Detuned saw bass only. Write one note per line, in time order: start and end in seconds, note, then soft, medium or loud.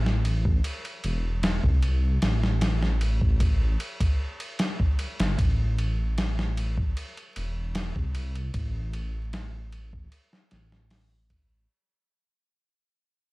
0.00 0.60 A1 loud
1.04 1.60 E1 medium
1.64 2.19 C2 medium
2.23 3.77 A1 loud
5.20 5.36 G1 medium
5.39 6.93 A1 medium
7.37 7.92 E1 medium
7.96 8.51 C2 medium
8.55 10.08 A1 medium
10.53 11.67 A1 medium